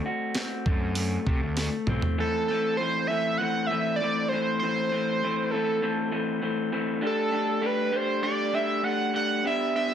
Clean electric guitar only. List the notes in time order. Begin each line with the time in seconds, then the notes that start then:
Already playing: A3 C4
0.06 F#4
0.36 C4
0.67 A3
0.97 A3
1.28 A3
1.58 A3
1.89 C4
2.18 E3 A3 C4
2.50 E3 A3 C4
2.80 E3 A3 C4
3.10 E3 A3 C4
3.40 E3 A3 C4
3.71 E3 A3 C4
4.01 E3 A3 C4
4.32 E3 A3 C4
4.62 E3 A3 C4
4.92 E3 A3 C4
5.23 E3 A3 C4
5.53 E3 A3 C4
5.82 E3 A3 C4
6.12 E3 A3 C4
6.42 E3 A3 C4
6.72 E3 A3 C4
7.01 A3 D4 G4
7.31 A3 D4 G4
7.62 A3 D4 G4
7.92 A3 D4 G4
8.22 A3 D4 G4
8.53 A3 D4 G4
8.83 A3 D4 G4
9.14 A3 D4 G4
9.44 B3 D4 G4
9.75 B3 D4 G4